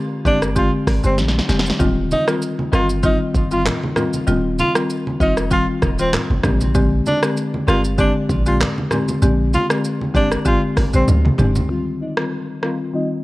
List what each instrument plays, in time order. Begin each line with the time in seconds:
Already playing: marimba D3 G#3 C4 G4
0.25 sub bass G1, marimba D3 G#3 C4 G4, tenor saxophone D4, kick, shaker
0.42 cross-stick, shaker
0.56 marimba D3 G#3 C4 G4, tenor saxophone F4, kick, shaker
0.87 sub bass G#1, kick, cross-stick, open hi-hat, shaker
1.04 sub bass G1, marimba D3 G#3 C4 G4, tenor saxophone C4, shaker
1.18 sub bass A#1, snare, shaker
1.28 snare
1.39 snare
1.48 sub bass F1, marimba D3 G#3 C4 G4, snare, shaker
1.59 snare
1.66 snare, shaker
1.79 sub bass D#1, marimba D#3 G3 C4 F4, kick, low conga, shaker
2.11 tenor saxophone D#4, high conga, shaker
2.27 marimba D#3 G3 C4 F4, cross-stick, shaker
2.42 shaker
2.59 high conga
2.72 sub bass G1, marimba D#3 G3 C4 F4, tenor saxophone F4, cross-stick, shaker
2.90 shaker
3.03 marimba D#3 G3 C4 F4, tenor saxophone D#4, kick, shaker
3.35 sub bass G1, kick, high conga, shaker
3.51 marimba D#3 G3 C4 F4, tenor saxophone F4, shaker
3.66 cross-stick, clap, low conga, shaker
3.83 high conga
3.96 marimba D#3 G3 C4 F4, cross-stick, low conga, shaker
4.13 high conga, shaker
4.27 sub bass D#1, marimba D#3 G3 C4 F4, low conga, shaker
4.59 tenor saxophone F4, high conga, shaker
4.75 marimba D#3 G3 C4 F4, cross-stick, shaker
4.90 shaker
5.07 high conga
5.20 sub bass F1, marimba D#3 G3 C4 F4, tenor saxophone D#4, kick, shaker
5.37 cross-stick, shaker
5.51 marimba D#3 G3 C4 F4, tenor saxophone F4, kick, shaker
5.82 sub bass D#1, kick, cross-stick, high conga, shaker
5.99 marimba D#3 G3 C4 F4, tenor saxophone C4, shaker
6.13 cross-stick, clap, low conga, shaker
6.30 sub bass G1, high conga
6.43 sub bass A#1, marimba D3 G#3 C4 G4, kick, cross-stick, low conga, shaker
6.61 high conga, shaker
6.75 marimba D3 G#3 C4 G4, kick, low conga, shaker
7.06 tenor saxophone D4, high conga, shaker
7.23 marimba D3 G#3 C4 G4, cross-stick, shaker
7.37 shaker
7.54 high conga
7.67 sub bass G1, marimba D3 G#3 C4 G4, tenor saxophone F4, cross-stick, shaker
7.85 shaker
7.98 marimba D3 G#3 C4 G4, tenor saxophone D4, kick, shaker
8.30 sub bass A#1, kick, high conga, shaker
8.46 marimba D3 G#3 C4 G4, tenor saxophone F4, shaker
8.60 cross-stick, clap, low conga, shaker
8.78 high conga
8.91 marimba D3 G#3 C4 G4, cross-stick, low conga, shaker
9.09 high conga, shaker
9.22 sub bass A#1, marimba D3 G#3 C4 G4, low conga, shaker
9.54 tenor saxophone F4, high conga, shaker
9.70 marimba D3 G#3 C4 G4, cross-stick, shaker
9.85 shaker
10.02 high conga
10.15 sub bass G1, marimba D3 G#3 C4 G4, tenor saxophone D4, kick, shaker
10.32 cross-stick, shaker
10.46 sub bass G#1, marimba D3 G#3 C4 G4, tenor saxophone F4, kick, shaker
10.77 sub bass G1, kick, cross-stick, open hi-hat, high conga, shaker
10.93 sub bass A#1, marimba D3 G#3 C4 G4, tenor saxophone C4, shaker
11.08 sub bass D2, high tom, low conga, shaker
11.25 mid tom, high conga
11.38 sub bass F1, marimba D3 G#3 C4 G4, mid tom, low conga, shaker
11.56 floor tom, high conga, shaker
11.69 marimba D#3 G3 C4 F4
12.02 tenor saxophone D#4
12.17 marimba D#3 G3 C4 F4, cross-stick
12.62 marimba D#3 G3 C4 F4, tenor saxophone F4, cross-stick
12.93 marimba D#3 G3 C4 F4, tenor saxophone D#4